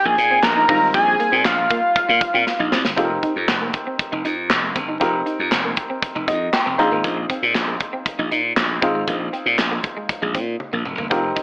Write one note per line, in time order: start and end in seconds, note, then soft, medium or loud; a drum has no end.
0.00 0.64 C4 medium
0.00 0.65 D#4 medium
0.00 0.65 F4 medium
0.00 0.65 G#4 medium
0.05 0.16 A#1 loud
0.05 0.15 A#3 medium
0.05 0.45 G#5 loud
0.18 0.39 A#2 loud
0.18 muted clean electric guitar stroke soft
0.18 closed hi-hat medium
0.31 0.40 C4 medium
0.43 0.64 A#1 medium
0.43 0.93 A#5 loud
0.43 muted clean electric guitar stroke soft
0.43 snare loud
0.43 clap medium
0.43 closed hi-hat medium
0.56 0.66 D#4 medium
0.68 0.89 G#1 medium
0.68 2.69 G3 medium
0.68 2.68 C4 medium
0.68 2.68 D#4 medium
0.68 0.78 D#4 medium
0.68 2.68 F4 medium
0.68 kick loud
0.68 open hi-hat medium
0.94 1.15 A#1 loud
0.94 1.46 G#5 loud
0.94 kick loud
0.94 closed hi-hat loud
1.07 muted clean electric guitar stroke soft
1.20 1.29 A#3 medium
1.20 closed hi-hat medium
1.32 1.43 A#2 medium
1.32 1.42 C4 medium
1.45 1.66 A#1 medium
1.45 2.72 F5 medium
1.45 snare loud
1.45 clap medium
1.45 closed hi-hat medium
1.70 1.80 A#3 medium
1.70 kick medium
1.70 closed hi-hat medium
1.96 kick loud
1.96 closed hi-hat medium
2.09 2.19 A#2 loud
2.09 2.18 A#3 medium
2.21 muted clean electric guitar stroke soft
2.21 kick loud
2.21 closed hi-hat medium
2.34 2.44 A#2 medium
2.34 2.44 C4 medium
2.47 muted clean electric guitar stroke soft
2.47 snare medium
2.60 2.70 A#1 medium
2.60 2.69 D#4 medium
2.72 2.83 C2 medium
2.72 2.82 C4 medium
2.72 snare loud
2.85 2.95 G1 medium
2.85 snare loud
2.96 3.18 F1 medium
2.96 4.96 C4 medium
2.96 4.97 D#4 medium
2.96 3.07 F4 medium
2.96 4.97 G4 medium
2.96 3.04 A4 medium
2.96 kick medium
2.96 closed hi-hat medium
3.04 5.00 A#4 medium
3.10 muted clean electric guitar stroke soft
3.23 3.32 D#4 medium
3.23 kick medium
3.23 closed hi-hat medium
3.36 3.46 F2 medium
3.48 3.69 F1 medium
3.48 snare loud
3.48 clap medium
3.48 closed hi-hat medium
3.61 3.71 A#3 medium
3.73 muted clean electric guitar stroke soft
3.73 kick medium
3.73 closed hi-hat medium
3.87 3.96 C4 medium
3.99 muted clean electric guitar stroke soft
3.99 kick loud
3.99 closed hi-hat medium
4.12 4.23 F1 medium
4.12 4.22 D#4 medium
4.25 4.52 F2 medium
4.25 4.34 D#4 medium
4.25 closed hi-hat medium
4.50 4.71 F1 medium
4.50 muted clean electric guitar stroke soft
4.50 snare loud
4.50 clap medium
4.50 closed hi-hat medium
4.76 4.96 G1 medium
4.76 4.85 C4 medium
4.76 kick medium
4.76 closed hi-hat medium
4.88 4.98 D#4 medium
5.00 5.22 F1 medium
5.00 6.75 C4 medium
5.00 6.75 D#4 medium
5.00 5.10 F4 medium
5.00 6.75 G4 medium
5.00 6.76 A#4 medium
5.00 kick medium
5.00 closed hi-hat medium
5.14 muted clean electric guitar stroke soft
5.26 5.36 D#4 medium
5.26 closed hi-hat medium
5.39 5.50 F2 medium
5.52 5.73 F1 medium
5.52 snare medium
5.52 clap medium
5.52 closed hi-hat medium
5.64 5.74 A#3 medium
5.77 muted clean electric guitar stroke soft
5.77 kick medium
5.77 closed hi-hat medium
5.90 5.99 C4 medium
6.02 muted clean electric guitar stroke soft
6.02 kick loud
6.02 closed hi-hat medium
6.15 6.29 F1 medium
6.15 6.25 D#4 medium
6.28 6.49 F2 medium
6.28 6.38 D#4 medium
6.28 6.52 D#5 medium
6.28 kick medium
6.28 closed hi-hat medium
6.53 6.77 G5 medium
6.53 snare loud
6.53 clap medium
6.53 closed hi-hat medium
6.66 6.77 F1 medium
6.66 6.76 C4 medium
6.78 6.89 A#1 medium
6.78 8.78 C4 medium
6.78 8.78 D#4 medium
6.78 8.78 F4 medium
6.78 8.79 G#4 medium
6.78 7.03 A#5 medium
6.78 muted clean electric guitar stroke soft
6.78 closed hi-hat medium
6.92 7.02 G#1 medium
6.92 7.01 A#3 medium
7.04 7.25 A#1 loud
7.04 7.14 A#3 medium
7.04 kick medium
7.04 closed hi-hat medium
7.17 muted clean electric guitar stroke soft
7.30 7.40 C4 medium
7.30 kick medium
7.30 closed hi-hat medium
7.43 7.53 A#2 medium
7.55 7.76 A#1 loud
7.55 snare medium
7.55 clap medium
7.55 closed hi-hat medium
7.68 7.77 A#3 medium
7.80 muted clean electric guitar stroke soft
7.80 kick medium
7.80 closed hi-hat medium
7.93 8.03 C4 medium
8.06 muted clean electric guitar stroke soft
8.06 kick loud
8.06 closed hi-hat medium
8.19 8.29 A#1 medium
8.19 8.28 D#4 medium
8.31 8.52 A#2 loud
8.31 8.41 D#4 medium
8.31 closed hi-hat medium
8.57 8.78 A#1 medium
8.57 muted clean electric guitar stroke soft
8.57 snare loud
8.57 clap medium
8.57 closed hi-hat medium
8.81 9.03 G#1 loud
8.81 10.81 C4 medium
8.81 8.92 C4 medium
8.81 10.82 D#4 medium
8.81 10.82 F4 medium
8.81 10.82 G#4 medium
8.81 kick loud
8.81 closed hi-hat medium
8.95 9.05 G#3 medium
9.08 9.28 A#1 medium
9.08 9.17 A#3 medium
9.08 kick medium
9.08 closed hi-hat medium
9.20 muted clean electric guitar stroke soft
9.33 9.43 C4 medium
9.33 closed hi-hat medium
9.46 9.56 A#2 loud
9.58 9.79 A#1 medium
9.58 snare loud
9.58 clap medium
9.58 closed hi-hat loud
9.71 9.81 A#3 medium
9.84 muted clean electric guitar stroke soft
9.84 kick medium
9.84 closed hi-hat medium
9.97 10.06 G#3 medium
10.09 muted clean electric guitar stroke soft
10.09 kick loud
10.09 closed hi-hat medium
10.22 10.36 A#1 medium
10.22 10.32 G#3 medium
10.35 10.55 A#2 medium
10.35 10.44 C4 medium
10.35 kick medium
10.35 closed hi-hat medium
10.60 high tom soft
10.73 10.83 A#1 medium
10.73 10.82 A#3 medium
10.73 mid tom medium
10.85 10.96 F1 medium
10.85 muted clean electric guitar stroke soft
10.85 mid tom medium
10.98 11.09 G1 medium
10.98 11.08 A#3 medium
10.98 floor tom medium
11.10 11.32 F1 loud
11.10 11.43 C4 medium
11.10 11.43 D#4 medium
11.10 11.20 F4 medium
11.10 11.43 G4 medium
11.10 11.43 A#4 medium
11.10 kick medium
11.10 closed hi-hat medium
11.24 muted clean electric guitar stroke soft
11.36 11.43 D#4 medium
11.36 kick medium
11.36 closed hi-hat medium